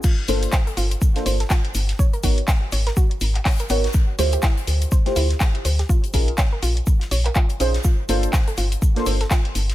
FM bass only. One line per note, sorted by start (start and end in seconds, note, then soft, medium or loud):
0.28 0.46 G1 loud
0.77 0.95 G1 medium
1.26 1.44 G1 medium
1.75 1.93 G1 medium
2.23 2.41 G#1 loud
2.72 2.90 G#1 medium
3.21 3.39 G#1 loud
3.70 3.88 G#1 medium
4.19 4.37 D2 loud
4.67 4.85 D2 medium
5.16 5.34 D2 medium
5.65 5.83 D2 medium
6.14 6.32 A#1 loud
6.63 6.80 A#1 medium
7.11 7.29 A#1 loud
7.60 7.78 A#1 medium
8.09 8.27 G1 loud
8.58 8.76 G1 medium
9.06 9.24 G1 loud
9.55 9.73 G1 medium